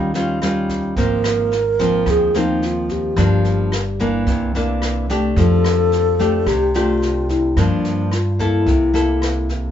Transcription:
0.00 0.93 D#2 medium
0.00 0.95 D#3 medium
0.00 0.10 G3 medium
0.00 0.11 C#4 medium
0.00 0.11 F4 medium
0.14 0.38 G3 medium
0.14 0.38 C#4 soft
0.14 0.38 F4 medium
0.14 snare soft
0.42 0.95 G3 soft
0.42 0.95 C#4 soft
0.42 0.95 F4 medium
0.42 cross-stick medium
0.42 snare soft
0.69 kick soft
0.69 snare soft
0.96 2.03 G#1 loud
0.96 2.04 G#2 medium
0.96 1.52 F3 medium
0.96 1.52 A#3 medium
0.96 1.52 C4 medium
0.96 2.12 A#4 loud
0.96 kick medium
0.96 snare soft
1.24 cross-stick medium
1.24 snare soft
1.52 snare soft
1.79 2.30 F3 medium
1.79 2.30 A#3 medium
1.79 2.30 C4 medium
1.79 kick soft
1.79 snare soft
2.06 3.13 D#2 medium
2.06 3.14 D#3 soft
2.06 kick medium
2.06 cross-stick medium
2.06 snare soft
2.10 2.39 G#4 medium
2.34 3.13 F3 soft
2.34 3.13 A#3 medium
2.34 3.13 C4 medium
2.34 2.67 D#4 medium
2.34 snare soft
2.62 2.93 F4 medium
2.62 snare soft
2.89 4.00 G4 medium
2.89 kick soft
2.89 snare soft
3.16 4.23 G1 loud
3.16 4.24 G2 medium
3.16 3.72 F3 medium
3.16 3.72 A#3 medium
3.16 3.72 D4 medium
3.16 kick medium
3.16 cross-stick medium
3.16 snare soft
3.45 snare soft
3.72 cross-stick medium
3.72 snare soft
3.99 4.50 E3 medium
3.99 4.51 A#3 medium
3.99 4.51 D4 medium
3.99 kick soft
3.99 snare soft
4.27 5.33 C2 medium
4.27 5.34 C3 medium
4.27 kick medium
4.27 snare soft
4.55 5.05 E3 soft
4.55 5.06 A#3 medium
4.55 5.06 D4 medium
4.55 snare soft
4.82 cross-stick soft
4.82 snare soft
5.09 6.15 A3 medium
5.09 6.15 D4 medium
5.09 6.16 G4 medium
5.09 kick soft
5.09 snare soft
5.36 6.43 F2 loud
5.36 6.45 F3 medium
5.36 6.49 A4 loud
5.36 kick medium
5.36 snare soft
5.64 cross-stick medium
5.64 snare soft
5.92 snare soft
6.19 6.70 A3 medium
6.19 6.70 D4 medium
6.19 6.71 G4 medium
6.19 kick soft
6.19 snare soft
6.46 7.53 C2 medium
6.46 7.54 C3 medium
6.46 6.77 G4 loud
6.46 kick medium
6.46 cross-stick medium
6.46 snare soft
6.74 7.53 A3 medium
6.74 7.53 D4 medium
6.74 7.32 F4 medium
6.74 7.53 G4 medium
6.74 snare soft
7.02 snare soft
7.29 7.60 E4 medium
7.29 kick soft
7.29 snare soft
7.57 8.63 G2 loud
7.57 8.64 G2 medium
7.57 8.12 F3 medium
7.57 8.12 A#3 medium
7.57 8.15 D4 medium
7.57 8.12 D4 medium
7.57 kick medium
7.57 cross-stick medium
7.57 snare soft
7.85 snare soft
8.12 8.42 F4 medium
8.12 cross-stick medium
8.12 snare soft
8.39 8.90 A#3 medium
8.39 8.90 E4 medium
8.39 9.50 E4 medium
8.39 8.90 A4 medium
8.39 kick soft
8.39 snare soft
8.66 9.71 C2 medium
8.66 9.71 C3 medium
8.66 kick medium
8.66 snare soft
8.93 9.71 A#3 medium
8.93 9.71 E4 medium
8.93 9.71 A4 medium
8.93 snare soft
9.22 cross-stick medium
9.22 snare soft
9.49 kick soft
9.49 snare soft

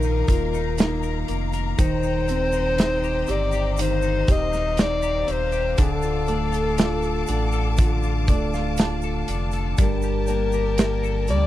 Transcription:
0.00 0.24 A#1 loud
0.00 1.74 D#3 medium
0.00 1.78 D#3 medium
0.00 0.24 A#3 medium
0.00 0.28 A#3 medium
0.00 1.75 A#3 medium
0.00 0.78 D#4 medium
0.00 0.26 F4 medium
0.00 1.02 A#4 medium
0.00 1.26 A#4 medium
0.00 1.75 F5 medium
0.00 5.75 A#5 medium
0.00 shaker medium
0.04 0.54 D#4 medium
0.28 1.24 D#1 medium
0.28 0.78 A#3 medium
0.28 1.74 F4 soft
0.28 kick medium
0.28 closed hi-hat medium
0.28 shaker soft
0.54 2.03 D#4 medium
0.54 shaker soft
0.78 1.27 A#3 medium
0.78 1.75 D#4 medium
0.78 snare loud
0.78 closed hi-hat medium
0.78 shaker medium
1.03 1.52 A#4 medium
1.03 shaker soft
1.28 1.75 F1 loud
1.28 1.89 A#3 medium
1.28 closed hi-hat medium
1.53 1.88 A#4 medium
1.53 closed hi-hat soft
1.53 shaker soft
1.78 3.25 D#1 loud
1.78 5.74 D#3 medium
1.78 3.77 D#3 medium
1.78 5.74 C5 medium
1.78 3.32 C5 loud
1.78 3.76 G5 medium
1.78 kick medium
1.78 closed hi-hat medium
1.78 shaker medium
2.03 2.52 D#4 medium
2.03 shaker soft
2.28 4.24 C4 medium
2.28 2.77 C4 medium
2.28 closed hi-hat medium
2.28 shaker soft
2.52 4.02 D#4 medium
2.52 shaker soft
2.77 3.27 C4 medium
2.77 3.77 D#4 medium
2.77 snare medium
2.77 closed hi-hat medium
2.77 shaker medium
3.04 3.52 G4 medium
3.04 shaker soft
3.27 4.25 G1 medium
3.27 4.26 C4 medium
3.27 4.27 G4 medium
3.27 3.73 D5 medium
3.27 closed hi-hat medium
3.27 shaker medium
3.52 5.01 G4 medium
3.52 shaker soft
3.73 3.83 D5 medium
3.77 5.77 D#3 medium
3.77 4.77 D#4 medium
3.77 9.74 F5 medium
3.77 closed hi-hat loud
3.77 shaker medium
3.82 4.33 C5 loud
4.02 4.51 D#4 medium
4.02 shaker soft
4.27 5.24 D#1 medium
4.27 4.77 C4 medium
4.27 5.74 G4 medium
4.27 kick medium
4.27 closed hi-hat medium
4.27 shaker soft
4.32 4.83 D#5 loud
4.52 5.88 D#4 medium
4.52 snare soft
4.52 shaker soft
4.77 5.26 C4 medium
4.77 5.75 D#4 medium
4.77 snare loud
4.77 closed hi-hat medium
4.77 shaker medium
4.82 5.33 D5 loud
5.02 5.51 G4 medium
5.02 shaker medium
5.27 5.75 D#1 loud
5.27 5.88 C4 medium
5.27 closed hi-hat medium
5.32 5.80 C5 medium
5.52 5.88 G4 medium
5.52 closed hi-hat soft
5.52 shaker soft
5.78 7.25 D1 loud
5.78 7.78 D3 medium
5.78 7.27 D3 medium
5.78 8.76 A4 medium
5.78 11.47 A5 medium
5.78 9.74 D6 medium
5.78 kick medium
5.78 closed hi-hat medium
5.78 shaker medium
6.02 6.51 F4 medium
6.02 shaker soft
6.27 8.24 A3 medium
6.27 6.78 D4 medium
6.27 closed hi-hat medium
6.27 shaker soft
6.52 8.03 F4 medium
6.52 closed hi-hat medium
6.52 shaker medium
6.78 7.28 D4 medium
6.78 7.77 F4 medium
6.78 snare medium
6.78 closed hi-hat medium
6.78 shaker medium
7.02 7.53 A4 medium
7.02 shaker soft
7.27 8.30 A1 medium
7.27 9.25 D3 medium
7.27 8.28 D4 medium
7.27 closed hi-hat medium
7.27 shaker medium
7.52 9.03 A4 medium
7.52 shaker soft
7.77 11.28 D3 medium
7.77 8.77 F4 soft
7.77 kick medium
7.77 closed hi-hat loud
7.77 shaker medium
8.03 8.53 F4 medium
8.03 shaker soft
8.27 9.24 D1 loud
8.27 9.75 A3 medium
8.27 8.78 D4 medium
8.27 8.52 D5 medium
8.27 kick medium
8.27 closed hi-hat medium
8.27 shaker soft
8.54 9.89 F4 medium
8.54 8.77 F5 medium
8.54 snare soft
8.54 shaker soft
8.77 9.28 D4 medium
8.77 9.76 F4 soft
8.77 9.75 A5 medium
8.77 snare medium
8.77 closed hi-hat medium
8.77 shaker medium
9.02 9.53 A4 medium
9.02 shaker soft
9.28 9.75 F1 loud
9.28 10.29 D4 medium
9.28 closed hi-hat medium
9.28 shaker soft
9.52 10.07 A4 medium
9.52 closed hi-hat soft
9.52 shaker soft
9.77 11.30 G1 medium
9.77 11.47 G2 medium
9.77 11.27 G3 medium
9.77 11.47 G5 medium
9.77 kick loud
9.77 closed hi-hat medium
9.77 shaker medium
9.82 11.26 A#4 medium
10.02 10.53 G4 soft
10.02 shaker soft
10.27 10.78 A#3 medium
10.27 11.47 D4 medium
10.27 closed hi-hat medium
10.27 shaker soft
10.52 11.47 G4 medium
10.52 shaker medium
10.78 11.28 A#3 medium
10.78 11.47 G4 medium
10.78 snare loud
10.78 closed hi-hat medium
10.78 shaker medium
11.04 11.47 A4 medium
11.04 shaker soft
11.27 11.47 D2 medium
11.27 11.47 G3 medium
11.27 11.47 A#3 medium
11.27 11.47 D5 medium
11.27 closed hi-hat medium
11.27 shaker medium

